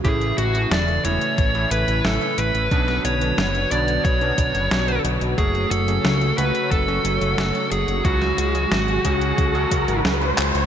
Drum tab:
HH |xxxxxxxxxxxxxxxx|xxxxxxxxxxxxxxxx|xxxxxxxxxxxxxxxx|xxxxxxxxxxxxxxxx|
CP |----------------|----------------|----------------|--------------x-|
SD |----o-------o---|-o--o-------o---|----o-------o---|-o--o-------o---|
BD |o-------o-------|o-------o-o-----|o-------o-------|o-----o-o-o-----|